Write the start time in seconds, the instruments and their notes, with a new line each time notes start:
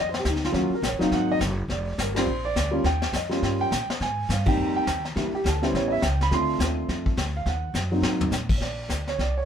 Already playing: upright bass F2
0.09 grand piano C5
0.14 snare
0.19 grand piano G4
0.25 upright bass D2, kick, snare, hi-hat pedal
0.29 grand piano D#4
0.36 snare
0.44 grand piano F4, snare
0.52 upright bass D#2, grand piano F#3 A#3 C#4 F4, brush sweep, kick, snare
0.58 grand piano F#4
0.70 muted upright bass stroke
0.74 grand piano A#4
0.82 upright bass A#1, kick, snare, hi-hat pedal
0.88 upright bass F#1, grand piano C#5
0.99 upright bass D#1, grand piano F#3 A#3 C4 D#4, snare
1.03 grand piano F5
1.11 upright bass G#1, grand piano F#5, brush sweep, kick, snare
1.32 grand piano D#5
1.39 upright bass F#1, kick, snare, hi-hat pedal
1.68 upright bass F1, grand piano D5, brush sweep, kick, snare
1.98 upright bass G1, grand piano A#4, kick, snare, hi-hat pedal
2.14 grand piano G3 C4 D4 F4 C5, snare, ride
2.26 upright bass A#1, brush sweep
2.45 grand piano D5
2.55 upright bass D2, kick, snare, hi-hat pedal
2.71 grand piano G3 A#3 C#4 F4
2.84 upright bass D#2, grand piano G5, brush sweep, kick, snare
3.02 snare
3.13 upright bass F2, grand piano D#5, kick, snare, hi-hat pedal
3.29 grand piano G3 A#3 C#4 F4 F5, snare
3.42 upright bass G2, brush sweep, kick, snare
3.61 grand piano G5
3.71 upright bass A#2, kick, snare, hi-hat pedal
3.88 muted upright bass stroke, snare
4.00 upright bass G#2, grand piano G#5, brush sweep, kick, snare
4.29 upright bass G2, grand piano F5, kick, snare, hi-hat pedal
4.46 grand piano G3 A#3 C4 D#4 G5, kick, crash
4.57 upright bass F2, brush sweep
4.76 grand piano G5
4.86 upright bass D#2, kick, snare, hi-hat pedal
5.05 snare
5.16 upright bass E2, grand piano G3 A#3 D4 E4, brush sweep, kick, snare
5.32 grand piano G4, muted upright bass stroke
5.44 upright bass D2, kick, snare, hi-hat pedal
5.49 grand piano A4
5.62 grand piano G3 B3 C#4 E4 C5, snare
5.74 upright bass A1, grand piano C#5, brush sweep, kick, snare
5.88 grand piano D#5 E5
6.02 upright bass C#2, grand piano G5, kick, snare, hi-hat pedal
6.21 grand piano B5, snare
6.31 upright bass D2, grand piano A3 C4 D4 F4 C6, brush sweep, kick, snare
6.59 upright bass D#2, kick, snare, hi-hat pedal
6.89 upright bass F2, brush sweep, kick, snare
7.06 kick
7.17 upright bass D2, kick, snare, hi-hat pedal
7.36 grand piano F5
7.46 upright bass D#2, grand piano F#5, brush sweep, kick, snare
7.74 upright bass F#2, snare, hi-hat pedal
7.91 grand piano F#3 A#3 C4 D#4
8.02 upright bass G#2, snare
8.21 floor tom
8.31 upright bass A#2, snare, hi-hat pedal
8.49 kick, crash
8.57 upright bass A#1, grand piano C#5 D5, brush sweep, kick, snare
8.89 upright bass D2, kick, snare, hi-hat pedal
9.07 grand piano C#5, snare
9.18 upright bass C2, grand piano D5, brush sweep, kick, snare
9.38 grand piano C#5